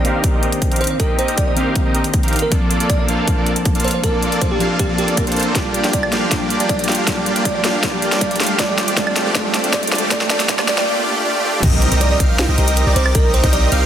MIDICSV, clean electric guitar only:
0, 0, Header, 1, 2, 480
1, 0, Start_track
1, 0, Tempo, 379747
1, 1261, Time_signature, 4, 2, 24, 8
1, 17518, End_track
2, 0, Start_track
2, 0, Title_t, "Clean electric guitar"
2, 0, Program_c, 0, 27
2, 36, Note_on_c, 0, 51, 92
2, 48, Note_on_c, 0, 58, 86
2, 61, Note_on_c, 0, 60, 82
2, 74, Note_on_c, 0, 62, 86
2, 86, Note_on_c, 0, 67, 102
2, 1221, Note_off_c, 0, 51, 0
2, 1227, Note_off_c, 0, 58, 0
2, 1233, Note_off_c, 0, 60, 0
2, 1237, Note_on_c, 0, 51, 70
2, 1239, Note_off_c, 0, 62, 0
2, 1246, Note_off_c, 0, 67, 0
2, 1249, Note_on_c, 0, 58, 66
2, 1262, Note_on_c, 0, 60, 62
2, 1274, Note_on_c, 0, 62, 61
2, 1287, Note_on_c, 0, 67, 79
2, 1941, Note_off_c, 0, 51, 0
2, 1947, Note_off_c, 0, 58, 0
2, 1954, Note_off_c, 0, 60, 0
2, 1955, Note_on_c, 0, 51, 93
2, 1960, Note_off_c, 0, 62, 0
2, 1966, Note_off_c, 0, 67, 0
2, 1968, Note_on_c, 0, 58, 90
2, 1980, Note_on_c, 0, 60, 88
2, 1993, Note_on_c, 0, 62, 88
2, 2005, Note_on_c, 0, 67, 107
2, 3140, Note_off_c, 0, 51, 0
2, 3147, Note_off_c, 0, 58, 0
2, 3153, Note_off_c, 0, 60, 0
2, 3155, Note_on_c, 0, 53, 69
2, 3159, Note_off_c, 0, 62, 0
2, 3165, Note_off_c, 0, 67, 0
2, 3169, Note_on_c, 0, 58, 66
2, 3181, Note_on_c, 0, 60, 65
2, 3194, Note_on_c, 0, 62, 66
2, 3206, Note_on_c, 0, 69, 78
2, 3860, Note_off_c, 0, 53, 0
2, 3867, Note_off_c, 0, 58, 0
2, 3873, Note_off_c, 0, 60, 0
2, 3875, Note_on_c, 0, 53, 98
2, 3880, Note_off_c, 0, 62, 0
2, 3886, Note_off_c, 0, 69, 0
2, 3887, Note_on_c, 0, 58, 90
2, 3899, Note_on_c, 0, 60, 86
2, 3912, Note_on_c, 0, 62, 86
2, 3925, Note_on_c, 0, 69, 107
2, 5060, Note_off_c, 0, 53, 0
2, 5066, Note_off_c, 0, 58, 0
2, 5072, Note_off_c, 0, 60, 0
2, 5073, Note_on_c, 0, 53, 70
2, 5079, Note_off_c, 0, 62, 0
2, 5085, Note_off_c, 0, 69, 0
2, 5086, Note_on_c, 0, 58, 65
2, 5099, Note_on_c, 0, 60, 63
2, 5112, Note_on_c, 0, 62, 67
2, 5125, Note_on_c, 0, 69, 81
2, 5779, Note_off_c, 0, 53, 0
2, 5786, Note_off_c, 0, 58, 0
2, 5792, Note_off_c, 0, 60, 0
2, 5795, Note_on_c, 0, 53, 97
2, 5798, Note_off_c, 0, 62, 0
2, 5805, Note_off_c, 0, 69, 0
2, 5807, Note_on_c, 0, 58, 90
2, 5820, Note_on_c, 0, 60, 87
2, 5833, Note_on_c, 0, 62, 88
2, 5845, Note_on_c, 0, 69, 107
2, 6505, Note_off_c, 0, 53, 0
2, 6511, Note_off_c, 0, 58, 0
2, 6517, Note_off_c, 0, 60, 0
2, 6524, Note_off_c, 0, 62, 0
2, 6526, Note_on_c, 0, 53, 93
2, 6530, Note_off_c, 0, 69, 0
2, 6532, Note_on_c, 0, 58, 83
2, 6539, Note_on_c, 0, 60, 83
2, 6545, Note_on_c, 0, 62, 79
2, 6551, Note_on_c, 0, 70, 98
2, 6634, Note_off_c, 0, 53, 0
2, 6641, Note_off_c, 0, 58, 0
2, 6644, Note_off_c, 0, 60, 0
2, 6648, Note_off_c, 0, 62, 0
2, 6649, Note_on_c, 0, 53, 77
2, 6651, Note_off_c, 0, 70, 0
2, 6656, Note_on_c, 0, 58, 70
2, 6662, Note_on_c, 0, 60, 69
2, 6669, Note_on_c, 0, 62, 71
2, 6675, Note_on_c, 0, 69, 82
2, 6986, Note_off_c, 0, 53, 0
2, 6990, Note_off_c, 0, 58, 0
2, 6992, Note_off_c, 0, 60, 0
2, 6995, Note_on_c, 0, 55, 64
2, 6996, Note_off_c, 0, 62, 0
2, 6999, Note_off_c, 0, 69, 0
2, 7008, Note_on_c, 0, 58, 61
2, 7021, Note_on_c, 0, 62, 59
2, 7033, Note_on_c, 0, 65, 58
2, 7046, Note_on_c, 0, 69, 73
2, 7700, Note_off_c, 0, 55, 0
2, 7707, Note_off_c, 0, 58, 0
2, 7713, Note_off_c, 0, 62, 0
2, 7715, Note_on_c, 0, 55, 89
2, 7719, Note_off_c, 0, 65, 0
2, 7726, Note_off_c, 0, 69, 0
2, 7728, Note_on_c, 0, 58, 81
2, 7741, Note_on_c, 0, 62, 82
2, 7753, Note_on_c, 0, 65, 80
2, 7766, Note_on_c, 0, 69, 99
2, 7940, Note_off_c, 0, 55, 0
2, 7953, Note_off_c, 0, 58, 0
2, 7955, Note_on_c, 0, 55, 64
2, 7962, Note_off_c, 0, 62, 0
2, 7968, Note_on_c, 0, 58, 59
2, 7969, Note_off_c, 0, 65, 0
2, 7975, Note_off_c, 0, 69, 0
2, 7980, Note_on_c, 0, 62, 56
2, 7993, Note_on_c, 0, 65, 59
2, 8660, Note_off_c, 0, 55, 0
2, 8667, Note_off_c, 0, 58, 0
2, 8673, Note_off_c, 0, 62, 0
2, 8675, Note_on_c, 0, 55, 87
2, 8679, Note_off_c, 0, 65, 0
2, 8687, Note_on_c, 0, 58, 81
2, 8700, Note_on_c, 0, 62, 82
2, 8713, Note_on_c, 0, 65, 84
2, 8726, Note_on_c, 0, 69, 99
2, 8899, Note_off_c, 0, 55, 0
2, 8912, Note_off_c, 0, 58, 0
2, 8914, Note_on_c, 0, 55, 69
2, 8922, Note_off_c, 0, 62, 0
2, 8928, Note_off_c, 0, 65, 0
2, 8928, Note_on_c, 0, 58, 65
2, 8935, Note_off_c, 0, 69, 0
2, 8940, Note_on_c, 0, 62, 60
2, 9620, Note_off_c, 0, 55, 0
2, 9626, Note_off_c, 0, 58, 0
2, 9633, Note_off_c, 0, 62, 0
2, 9634, Note_on_c, 0, 55, 97
2, 9647, Note_on_c, 0, 58, 86
2, 9659, Note_on_c, 0, 62, 88
2, 9671, Note_on_c, 0, 65, 86
2, 9685, Note_on_c, 0, 69, 102
2, 9859, Note_off_c, 0, 55, 0
2, 9872, Note_off_c, 0, 58, 0
2, 9874, Note_on_c, 0, 55, 67
2, 9882, Note_off_c, 0, 62, 0
2, 9887, Note_on_c, 0, 58, 60
2, 9888, Note_off_c, 0, 65, 0
2, 9894, Note_off_c, 0, 69, 0
2, 9899, Note_on_c, 0, 62, 64
2, 9925, Note_on_c, 0, 69, 75
2, 10580, Note_off_c, 0, 55, 0
2, 10586, Note_off_c, 0, 58, 0
2, 10592, Note_off_c, 0, 62, 0
2, 10595, Note_on_c, 0, 55, 92
2, 10605, Note_off_c, 0, 69, 0
2, 10607, Note_on_c, 0, 57, 86
2, 10620, Note_on_c, 0, 62, 90
2, 10632, Note_on_c, 0, 65, 87
2, 10645, Note_on_c, 0, 69, 106
2, 10821, Note_off_c, 0, 55, 0
2, 10836, Note_off_c, 0, 57, 0
2, 10836, Note_on_c, 0, 55, 71
2, 10842, Note_off_c, 0, 62, 0
2, 10848, Note_off_c, 0, 65, 0
2, 10849, Note_on_c, 0, 57, 68
2, 10854, Note_off_c, 0, 69, 0
2, 10862, Note_on_c, 0, 62, 65
2, 10874, Note_on_c, 0, 65, 65
2, 10886, Note_on_c, 0, 69, 75
2, 11300, Note_off_c, 0, 55, 0
2, 11312, Note_off_c, 0, 57, 0
2, 11315, Note_on_c, 0, 55, 74
2, 11323, Note_off_c, 0, 62, 0
2, 11327, Note_on_c, 0, 57, 71
2, 11329, Note_off_c, 0, 65, 0
2, 11335, Note_off_c, 0, 69, 0
2, 11340, Note_on_c, 0, 62, 71
2, 11353, Note_on_c, 0, 65, 68
2, 11365, Note_on_c, 0, 69, 85
2, 11781, Note_off_c, 0, 55, 0
2, 11796, Note_off_c, 0, 57, 0
2, 11796, Note_on_c, 0, 55, 74
2, 11802, Note_off_c, 0, 62, 0
2, 11809, Note_off_c, 0, 65, 0
2, 11809, Note_on_c, 0, 57, 67
2, 11815, Note_off_c, 0, 69, 0
2, 11822, Note_on_c, 0, 62, 67
2, 11834, Note_on_c, 0, 65, 66
2, 11846, Note_on_c, 0, 69, 79
2, 12262, Note_off_c, 0, 55, 0
2, 12274, Note_off_c, 0, 57, 0
2, 12277, Note_on_c, 0, 55, 74
2, 12283, Note_off_c, 0, 62, 0
2, 12289, Note_off_c, 0, 65, 0
2, 12289, Note_on_c, 0, 57, 70
2, 12295, Note_off_c, 0, 69, 0
2, 12301, Note_on_c, 0, 62, 68
2, 12314, Note_on_c, 0, 65, 69
2, 12327, Note_on_c, 0, 69, 83
2, 12741, Note_off_c, 0, 55, 0
2, 12753, Note_off_c, 0, 57, 0
2, 12756, Note_on_c, 0, 55, 74
2, 12763, Note_off_c, 0, 62, 0
2, 12769, Note_off_c, 0, 65, 0
2, 12769, Note_on_c, 0, 57, 65
2, 12775, Note_off_c, 0, 69, 0
2, 12782, Note_on_c, 0, 62, 67
2, 12794, Note_on_c, 0, 65, 72
2, 12807, Note_on_c, 0, 69, 80
2, 12982, Note_off_c, 0, 55, 0
2, 12996, Note_off_c, 0, 57, 0
2, 12997, Note_on_c, 0, 55, 77
2, 13003, Note_off_c, 0, 62, 0
2, 13009, Note_off_c, 0, 65, 0
2, 13009, Note_on_c, 0, 57, 72
2, 13015, Note_off_c, 0, 69, 0
2, 13022, Note_on_c, 0, 62, 71
2, 13034, Note_on_c, 0, 65, 70
2, 13047, Note_on_c, 0, 69, 88
2, 13221, Note_off_c, 0, 55, 0
2, 13234, Note_off_c, 0, 57, 0
2, 13236, Note_on_c, 0, 55, 79
2, 13243, Note_off_c, 0, 62, 0
2, 13249, Note_off_c, 0, 65, 0
2, 13249, Note_on_c, 0, 57, 71
2, 13255, Note_off_c, 0, 69, 0
2, 13261, Note_on_c, 0, 62, 71
2, 13274, Note_on_c, 0, 65, 71
2, 13286, Note_on_c, 0, 69, 84
2, 13461, Note_off_c, 0, 55, 0
2, 13476, Note_off_c, 0, 57, 0
2, 13476, Note_on_c, 0, 55, 74
2, 13483, Note_off_c, 0, 62, 0
2, 13489, Note_off_c, 0, 65, 0
2, 13489, Note_on_c, 0, 57, 70
2, 13495, Note_off_c, 0, 69, 0
2, 13502, Note_on_c, 0, 62, 69
2, 13514, Note_on_c, 0, 65, 70
2, 13527, Note_on_c, 0, 69, 84
2, 13710, Note_off_c, 0, 55, 0
2, 13717, Note_off_c, 0, 57, 0
2, 13723, Note_off_c, 0, 62, 0
2, 13729, Note_off_c, 0, 65, 0
2, 13736, Note_off_c, 0, 69, 0
2, 17518, End_track
0, 0, End_of_file